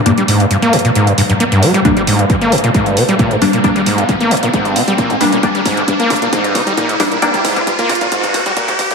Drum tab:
HH |x-x-o-x-x-x-oxx-x-x-o-x-x-x-o-x-|x-x-o-x-x-x-oxx-x-x-o-x-x-x-o-x-|x-x-o-x-x-x-oxx-x-x-o-x-x-x-o-x-|x-x-o-x-x-x-oxx-x-x-o-x-x-x-o-x-|
T2 |--------------------------------|--o---o---o---o---o---o---o---o-|--o---o---o---o---o---o---o---o-|--o---o---o---o---o---o---o---o-|
BD |--------------------------------|o-------o-------o-------o-------|o-------o-------o-------o-------|o---o---o---o---o---o---o---o---|

HH |x-x-o-x-x-x-oxx-x-x-o-x-x-x-o-x-|
T2 |--o---o---o---o---o---o---o---o-|
BD |o-o-o-o-o-o-o-o-o-o-o-o-o-o-o-o-|